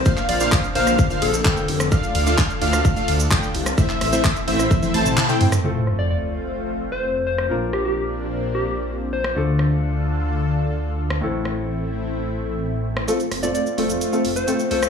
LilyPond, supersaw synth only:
\new Staff \with { instrumentName = "Supersaw synth" } { \time 4/4 \key f \major \tempo 4 = 129 <bes d' f' c'' f''>8. <bes d' f' c'' f''>8 r16 <bes d' f' c'' f''>8. <bes d' f' c'' f''>16 r8 <bes d' f' c'' g''>16 r8. | <a d' f' d'' f''>8. <a d' f' d'' f''>8 r16 <a d' f' d'' f''>8. <a d' f' d'' f''>16 r8 <a d' f' d'' g''>16 r8. | <a c' e' c'' e''>8. <a c' e' c'' e''>8 r16 <a c' e' c'' e''>8. <a c' e' c'' e''>16 <a c' e' c'' a''>8. <a c' e' c'' g''>16 r8 | r1 |
r1 | r1 | r1 | <a c' f' c'' f''>8. <a c' f' c'' f''>8 r16 <a c' f' c'' f''>8. <a c' f' c'' f''>16 r8 <a c' f' c'' g''>16 r8. | }